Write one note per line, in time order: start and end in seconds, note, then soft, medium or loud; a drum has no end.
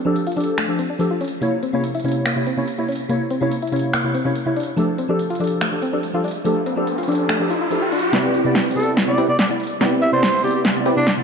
0.05 0.15 F3 medium
0.05 0.15 D4 medium
0.05 0.10 D4 medium
0.05 0.15 G4 medium
0.05 0.16 A4 loud
0.16 closed hi-hat medium
0.27 0.33 F4 medium
0.27 closed hi-hat soft
0.32 0.66 F3 medium
0.32 closed hi-hat medium
0.36 0.66 D4 medium
0.36 0.43 D4 medium
0.36 0.66 G4 medium
0.36 0.67 A4 medium
0.36 closed hi-hat soft
0.40 closed hi-hat medium
0.44 closed hi-hat medium
0.58 0.64 A3 medium
0.58 finger snap medium
0.58 closed hi-hat medium
0.68 0.78 F3 medium
0.68 0.78 D4 medium
0.68 0.78 G4 medium
0.68 0.79 A4 medium
0.79 0.85 C4 medium
0.79 closed hi-hat medium
0.90 0.94 D4 medium
0.99 1.06 F3 medium
0.99 1.06 D4 medium
0.99 1.06 G4 medium
0.99 1.07 A4 medium
0.99 closed hi-hat medium
1.11 1.17 F4 medium
1.21 1.27 C#4 medium
1.21 closed hi-hat soft
1.24 closed hi-hat medium
1.28 closed hi-hat medium
1.41 1.51 C3 medium
1.41 1.52 A#3 medium
1.41 1.48 A#3 medium
1.41 1.52 E4 medium
1.41 1.52 C#5 medium
1.41 closed hi-hat medium
1.63 1.69 C4 medium
1.63 closed hi-hat medium
1.73 1.83 C3 medium
1.73 1.83 A#3 medium
1.73 1.78 C#4 medium
1.73 1.83 E4 medium
1.73 1.84 C#5 medium
1.84 closed hi-hat medium
1.95 2.00 E4 medium
1.95 closed hi-hat soft
2.00 closed hi-hat medium
2.04 2.33 C3 medium
2.04 2.34 A#3 medium
2.04 2.11 C#4 medium
2.04 2.34 E4 medium
2.04 2.34 C#5 medium
2.04 closed hi-hat soft
2.08 closed hi-hat medium
2.12 closed hi-hat medium
2.26 2.32 A#3 medium
2.26 finger snap medium
2.26 closed hi-hat medium
2.36 2.46 C3 medium
2.36 2.46 A#3 medium
2.36 2.46 E4 medium
2.36 2.46 C#5 medium
2.47 2.53 C4 medium
2.47 closed hi-hat medium
2.56 2.63 C3 medium
2.56 2.63 A#3 medium
2.56 2.61 C#4 medium
2.56 2.64 E4 medium
2.56 2.64 C#5 medium
2.68 closed hi-hat medium
2.77 2.84 C3 medium
2.77 2.84 A#3 medium
2.77 2.84 E4 medium
2.77 2.85 E4 medium
2.77 2.85 C#5 medium
2.88 2.95 C#4 medium
2.88 closed hi-hat soft
2.92 closed hi-hat medium
2.96 closed hi-hat medium
3.08 3.19 C3 medium
3.08 3.20 A#3 medium
3.08 3.16 A#3 medium
3.08 3.20 E4 medium
3.08 3.20 C#5 medium
3.08 closed hi-hat medium
3.30 3.37 C4 medium
3.30 closed hi-hat medium
3.40 3.50 C3 medium
3.40 3.51 A#3 medium
3.40 3.45 C#4 medium
3.40 3.51 E4 medium
3.40 3.51 C#5 loud
3.51 closed hi-hat medium
3.62 3.68 E4 medium
3.62 closed hi-hat soft
3.67 4.01 C3 medium
3.67 closed hi-hat medium
3.72 4.02 A#3 medium
3.72 3.79 C#4 medium
3.72 4.02 E4 medium
3.72 4.02 C#5 medium
3.72 closed hi-hat soft
3.76 closed hi-hat medium
3.79 closed hi-hat medium
3.93 4.00 A#3 medium
3.93 finger snap medium
3.93 closed hi-hat medium
4.03 4.13 C3 medium
4.03 4.14 A#3 medium
4.03 4.14 E4 medium
4.03 4.14 C#5 medium
4.14 4.21 C4 medium
4.14 closed hi-hat medium
4.24 4.31 C3 medium
4.24 4.31 A#3 medium
4.24 4.29 C#4 medium
4.24 4.31 E4 medium
4.24 4.32 C#5 medium
4.35 closed hi-hat medium
4.45 4.52 C3 medium
4.45 4.52 A#3 medium
4.45 4.52 E4 medium
4.45 4.53 C#5 medium
4.56 4.63 D4 medium
4.56 closed hi-hat soft
4.60 closed hi-hat medium
4.63 closed hi-hat medium
4.76 4.87 F3 medium
4.76 4.84 A3 medium
4.76 4.88 D4 medium
4.76 4.88 G4 medium
4.76 4.88 A4 medium
4.76 closed hi-hat medium
4.76 riser medium
4.98 5.05 C4 medium
4.98 closed hi-hat medium
5.08 5.18 F3 medium
5.08 5.19 D4 medium
5.08 5.13 D4 medium
5.08 5.19 G4 medium
5.08 5.19 A4 loud
5.19 closed hi-hat medium
5.30 5.36 F4 medium
5.30 closed hi-hat soft
5.35 closed hi-hat medium
5.39 5.69 F3 medium
5.39 5.69 D4 medium
5.39 5.47 D4 medium
5.39 5.70 G4 medium
5.39 5.70 A4 medium
5.39 closed hi-hat soft
5.44 closed hi-hat medium
5.47 closed hi-hat medium
5.61 5.68 A3 medium
5.61 finger snap medium
5.61 closed hi-hat medium
5.71 5.81 F3 medium
5.71 5.82 D4 medium
5.71 5.82 G4 medium
5.71 5.82 A4 medium
5.82 5.89 C4 medium
5.82 closed hi-hat medium
5.92 5.99 F3 medium
5.92 5.99 D4 medium
5.92 5.97 D4 medium
5.92 5.99 G4 medium
5.92 6.00 A4 medium
6.03 closed hi-hat medium
6.13 6.20 F3 medium
6.13 6.20 D4 medium
6.13 6.20 F4 medium
6.13 6.20 G4 medium
6.13 6.21 A4 medium
6.24 6.31 D4 medium
6.24 closed hi-hat soft
6.28 closed hi-hat medium
6.31 closed hi-hat medium
6.44 6.55 F3 medium
6.44 6.52 A3 medium
6.44 6.55 D4 medium
6.44 6.56 G4 medium
6.44 6.56 A4 medium
6.44 closed hi-hat medium
6.66 6.73 C4 medium
6.66 closed hi-hat medium
6.76 6.86 F3 medium
6.76 6.86 D4 medium
6.76 6.81 D4 medium
6.76 6.87 G4 medium
6.76 6.87 A4 loud
6.87 closed hi-hat medium
6.98 7.04 F4 medium
6.98 closed hi-hat soft
7.03 closed hi-hat medium
7.07 7.37 F3 medium
7.07 7.37 D4 medium
7.07 7.15 D4 medium
7.07 7.38 G4 medium
7.07 7.38 A4 medium
7.07 closed hi-hat soft
7.12 closed hi-hat medium
7.15 closed hi-hat medium
7.29 7.36 A3 medium
7.29 finger snap medium
7.29 closed hi-hat medium
7.39 7.49 F3 medium
7.39 7.49 D4 medium
7.39 7.50 G4 medium
7.39 7.50 A4 medium
7.50 7.53 F4 medium
7.50 closed hi-hat medium
7.61 7.63 F4 medium
7.70 7.77 F3 medium
7.70 7.77 D4 medium
7.70 7.78 G4 medium
7.70 7.78 A4 medium
7.70 closed hi-hat medium
7.82 7.84 G4 medium
7.92 7.96 D4 medium
7.92 closed hi-hat soft
7.96 closed hi-hat medium
7.99 closed hi-hat medium
8.12 8.23 C3 medium
8.12 8.23 B3 medium
8.12 9.16 C4 medium
8.12 9.16 E4 medium
8.12 8.24 E4 medium
8.12 9.16 G4 medium
8.12 9.16 B4 medium
8.12 9.16 D5 loud
8.12 8.24 D5 medium
8.12 snare soft
8.12 closed hi-hat medium
8.34 closed hi-hat medium
8.44 8.54 C3 medium
8.44 8.54 B3 medium
8.44 8.55 E4 medium
8.44 8.55 D5 loud
8.55 snare soft
8.55 closed hi-hat medium
8.66 closed hi-hat soft
8.71 9.05 C3 medium
8.71 closed hi-hat medium
8.76 9.05 B3 medium
8.76 9.05 E4 medium
8.76 8.91 A4 medium
8.76 9.06 D5 medium
8.76 closed hi-hat soft
8.80 closed hi-hat medium
8.83 closed hi-hat medium
8.97 snare soft
8.97 closed hi-hat medium
9.07 9.17 C3 medium
9.07 9.17 B3 medium
9.07 9.18 E4 medium
9.07 9.23 D5 medium
9.07 9.18 D5 medium
9.18 9.28 C4 medium
9.18 9.28 E4 medium
9.18 9.28 G4 medium
9.18 9.28 B4 medium
9.18 9.28 D5 medium
9.18 closed hi-hat medium
9.28 9.34 C3 medium
9.28 9.35 B3 medium
9.28 9.35 E4 medium
9.28 9.35 D5 medium
9.39 9.46 D5 medium
9.39 snare soft
9.39 closed hi-hat medium
9.49 9.55 C3 medium
9.49 9.56 B3 medium
9.49 9.56 E4 medium
9.49 9.56 D5 medium
9.60 closed hi-hat soft
9.64 closed hi-hat medium
9.67 closed hi-hat medium
9.80 9.91 C3 medium
9.80 9.91 B3 medium
9.80 10.83 C4 medium
9.80 10.83 E4 medium
9.80 9.91 E4 medium
9.80 10.83 G4 medium
9.80 10.83 B4 medium
9.80 10.83 D5 loud
9.80 9.92 D5 loud
9.80 snare soft
9.80 closed hi-hat medium
10.02 10.11 E5 medium
10.02 closed hi-hat medium
10.12 10.22 C3 medium
10.12 10.22 B3 medium
10.12 10.22 E4 medium
10.12 10.42 C5 medium
10.12 10.23 D5 loud
10.23 snare medium
10.23 closed hi-hat medium
10.34 closed hi-hat soft
10.39 closed hi-hat medium
10.43 10.73 C3 medium
10.43 10.73 B3 medium
10.43 10.73 E4 medium
10.43 10.51 G4 medium
10.43 10.74 D5 medium
10.43 closed hi-hat soft
10.47 closed hi-hat medium
10.51 10.61 G4 medium
10.51 closed hi-hat medium
10.65 snare medium
10.65 closed hi-hat medium
10.75 10.85 C3 medium
10.75 10.85 B3 medium
10.75 10.85 E4 medium
10.75 10.86 D5 medium
10.86 10.95 C4 medium
10.86 10.95 E4 medium
10.86 10.95 G4 medium
10.86 10.95 B4 medium
10.86 10.96 D5 medium
10.86 closed hi-hat medium
10.96 11.02 C3 medium
10.96 11.02 B3 medium
10.96 11.12 D4 medium
10.96 11.03 E4 medium
10.96 11.03 D5 medium
11.07 snare medium
11.07 closed hi-hat medium
11.17 11.23 C3 medium
11.17 11.23 B3 medium
11.17 11.23 E4 medium
11.17 11.23 D5 medium